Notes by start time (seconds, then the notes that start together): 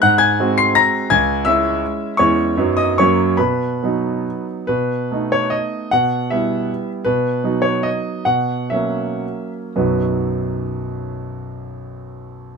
0.02 G#2 F#5 F#6
0.18 G#5 G#6
0.40 G#3 C4 F#4
0.58 C6 C7
0.75 A#5 A#6
1.10 C#2 G#5 G#6
1.45 G#3 C#4 E4 E5 E6
2.17 E2 G#3 C#4 E4 C#5 C#6
2.57 F#2 F#3 B3 D#4
2.77 D#5 D#6
2.98 F#2 F#3 A#3 C#4 C#5 C#6
3.37 B2 B4 B5
3.83 F#3 B3 D#4
4.67 B2 B4
5.11 A3 B3 D#4
5.32 C#5
5.50 D#5
5.91 B2 F#5
6.30 G3 B3 E4 E5
7.05 B2 B4
7.44 F#3 B3 D#4
7.62 C#5
7.83 D#5
8.25 B2 F#5
8.70 F#3 A#3 C#4 E5
9.76 B1 F#2 F#3 B3 D#4 F#4 B4